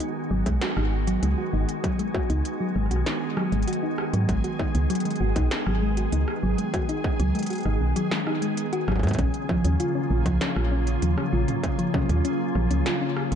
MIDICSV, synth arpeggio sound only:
0, 0, Header, 1, 2, 480
1, 0, Start_track
1, 0, Tempo, 612245
1, 1442, Time_signature, 4, 2, 24, 8
1, 10467, End_track
2, 0, Start_track
2, 0, Title_t, "Synth arpeggio sound"
2, 0, Program_c, 0, 84
2, 2, Note_on_c, 0, 63, 79
2, 116, Note_off_c, 0, 63, 0
2, 242, Note_on_c, 0, 54, 104
2, 356, Note_off_c, 0, 54, 0
2, 362, Note_on_c, 0, 56, 83
2, 421, Note_off_c, 0, 56, 0
2, 482, Note_on_c, 0, 66, 84
2, 581, Note_off_c, 0, 66, 0
2, 602, Note_on_c, 0, 63, 72
2, 716, Note_off_c, 0, 63, 0
2, 842, Note_on_c, 0, 54, 100
2, 956, Note_off_c, 0, 54, 0
2, 961, Note_on_c, 0, 56, 80
2, 1021, Note_off_c, 0, 56, 0
2, 1081, Note_on_c, 0, 66, 78
2, 1181, Note_off_c, 0, 66, 0
2, 1201, Note_on_c, 0, 63, 75
2, 1316, Note_off_c, 0, 63, 0
2, 1441, Note_on_c, 0, 54, 98
2, 1556, Note_off_c, 0, 54, 0
2, 1561, Note_on_c, 0, 56, 78
2, 1621, Note_off_c, 0, 56, 0
2, 1681, Note_on_c, 0, 66, 77
2, 1781, Note_off_c, 0, 66, 0
2, 1802, Note_on_c, 0, 63, 80
2, 1916, Note_off_c, 0, 63, 0
2, 2042, Note_on_c, 0, 54, 92
2, 2156, Note_off_c, 0, 54, 0
2, 2162, Note_on_c, 0, 56, 72
2, 2221, Note_off_c, 0, 56, 0
2, 2282, Note_on_c, 0, 66, 84
2, 2381, Note_off_c, 0, 66, 0
2, 2402, Note_on_c, 0, 63, 78
2, 2516, Note_off_c, 0, 63, 0
2, 2642, Note_on_c, 0, 54, 100
2, 2756, Note_off_c, 0, 54, 0
2, 2762, Note_on_c, 0, 56, 71
2, 2821, Note_off_c, 0, 56, 0
2, 2882, Note_on_c, 0, 66, 84
2, 2981, Note_off_c, 0, 66, 0
2, 3002, Note_on_c, 0, 63, 75
2, 3116, Note_off_c, 0, 63, 0
2, 3242, Note_on_c, 0, 54, 101
2, 3356, Note_off_c, 0, 54, 0
2, 3362, Note_on_c, 0, 56, 80
2, 3421, Note_off_c, 0, 56, 0
2, 3482, Note_on_c, 0, 66, 75
2, 3581, Note_off_c, 0, 66, 0
2, 3602, Note_on_c, 0, 63, 73
2, 3716, Note_off_c, 0, 63, 0
2, 3842, Note_on_c, 0, 54, 103
2, 3956, Note_off_c, 0, 54, 0
2, 3962, Note_on_c, 0, 56, 70
2, 4021, Note_off_c, 0, 56, 0
2, 4082, Note_on_c, 0, 66, 74
2, 4181, Note_off_c, 0, 66, 0
2, 4202, Note_on_c, 0, 63, 80
2, 4316, Note_off_c, 0, 63, 0
2, 4442, Note_on_c, 0, 54, 91
2, 4556, Note_off_c, 0, 54, 0
2, 4562, Note_on_c, 0, 56, 76
2, 4621, Note_off_c, 0, 56, 0
2, 4682, Note_on_c, 0, 66, 74
2, 4781, Note_off_c, 0, 66, 0
2, 4802, Note_on_c, 0, 63, 81
2, 4916, Note_off_c, 0, 63, 0
2, 5042, Note_on_c, 0, 54, 104
2, 5156, Note_off_c, 0, 54, 0
2, 5162, Note_on_c, 0, 56, 75
2, 5221, Note_off_c, 0, 56, 0
2, 5282, Note_on_c, 0, 66, 83
2, 5381, Note_off_c, 0, 66, 0
2, 5402, Note_on_c, 0, 63, 78
2, 5516, Note_off_c, 0, 63, 0
2, 5642, Note_on_c, 0, 54, 102
2, 5756, Note_off_c, 0, 54, 0
2, 5762, Note_on_c, 0, 56, 81
2, 5821, Note_off_c, 0, 56, 0
2, 5882, Note_on_c, 0, 66, 74
2, 5981, Note_off_c, 0, 66, 0
2, 6002, Note_on_c, 0, 63, 76
2, 6116, Note_off_c, 0, 63, 0
2, 6242, Note_on_c, 0, 54, 101
2, 6356, Note_off_c, 0, 54, 0
2, 6362, Note_on_c, 0, 56, 73
2, 6421, Note_off_c, 0, 56, 0
2, 6482, Note_on_c, 0, 63, 76
2, 6542, Note_off_c, 0, 63, 0
2, 6602, Note_on_c, 0, 56, 77
2, 6716, Note_off_c, 0, 56, 0
2, 6842, Note_on_c, 0, 66, 104
2, 6956, Note_off_c, 0, 66, 0
2, 6962, Note_on_c, 0, 54, 73
2, 7061, Note_off_c, 0, 54, 0
2, 7082, Note_on_c, 0, 56, 76
2, 7181, Note_off_c, 0, 56, 0
2, 7202, Note_on_c, 0, 61, 82
2, 7316, Note_off_c, 0, 61, 0
2, 7442, Note_on_c, 0, 53, 106
2, 7556, Note_off_c, 0, 53, 0
2, 7562, Note_on_c, 0, 61, 79
2, 7621, Note_off_c, 0, 61, 0
2, 7682, Note_on_c, 0, 65, 82
2, 7781, Note_off_c, 0, 65, 0
2, 7802, Note_on_c, 0, 61, 73
2, 7916, Note_off_c, 0, 61, 0
2, 8042, Note_on_c, 0, 53, 110
2, 8156, Note_off_c, 0, 53, 0
2, 8162, Note_on_c, 0, 61, 80
2, 8221, Note_off_c, 0, 61, 0
2, 8282, Note_on_c, 0, 65, 74
2, 8381, Note_off_c, 0, 65, 0
2, 8402, Note_on_c, 0, 61, 74
2, 8516, Note_off_c, 0, 61, 0
2, 8641, Note_on_c, 0, 53, 100
2, 8756, Note_off_c, 0, 53, 0
2, 8761, Note_on_c, 0, 61, 74
2, 8821, Note_off_c, 0, 61, 0
2, 8881, Note_on_c, 0, 65, 71
2, 8981, Note_off_c, 0, 65, 0
2, 9001, Note_on_c, 0, 61, 73
2, 9116, Note_off_c, 0, 61, 0
2, 9241, Note_on_c, 0, 53, 103
2, 9356, Note_off_c, 0, 53, 0
2, 9362, Note_on_c, 0, 61, 80
2, 9421, Note_off_c, 0, 61, 0
2, 9482, Note_on_c, 0, 65, 82
2, 9581, Note_off_c, 0, 65, 0
2, 9601, Note_on_c, 0, 61, 80
2, 9716, Note_off_c, 0, 61, 0
2, 9842, Note_on_c, 0, 53, 96
2, 9956, Note_off_c, 0, 53, 0
2, 9962, Note_on_c, 0, 61, 80
2, 10021, Note_off_c, 0, 61, 0
2, 10082, Note_on_c, 0, 65, 84
2, 10181, Note_off_c, 0, 65, 0
2, 10202, Note_on_c, 0, 61, 72
2, 10316, Note_off_c, 0, 61, 0
2, 10442, Note_on_c, 0, 53, 93
2, 10467, Note_off_c, 0, 53, 0
2, 10467, End_track
0, 0, End_of_file